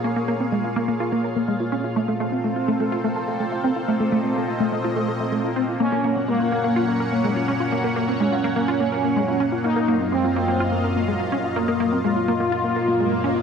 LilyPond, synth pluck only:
\new Staff \with { instrumentName = "Synth pluck" } { \time 4/4 \key f \phrygian \tempo 4 = 125 bes16 bes16 bes16 c'16 aes16 f'16 bes16 bes16 f'16 bes16 bes'16 bes16 aes16 f'16 des'16 f'16 | a16 a16 a16 c'16 a16 f'16 a16 a16 f'16 a16 a'16 a16 a16 f'16 c'16 f'16 | a16 a16 a16 c'16 a16 f'16 a16 a16 f'16 a16 a'16 a16 a16 f'16 c'16 f'16 | bes16 bes16 bes16 c'16 aes16 f'16 bes16 bes16 f'16 bes16 bes'16 bes16 aes16 f'16 des'16 f'16 |
bes16 bes16 bes16 c'16 aes16 f'16 bes16 bes16 f'16 bes16 bes'16 bes16 aes16 f'16 des'16 f'16 | bes16 bes16 bes16 c'16 aes16 f'16 bes16 bes16 f'16 bes16 bes'16 bes16 aes16 f'16 des'16 f'16 | bes16 bes16 bes16 c'16 aes16 f'16 bes16 bes16 f'16 bes16 bes'16 bes16 aes16 f'16 des'16 f'16 | }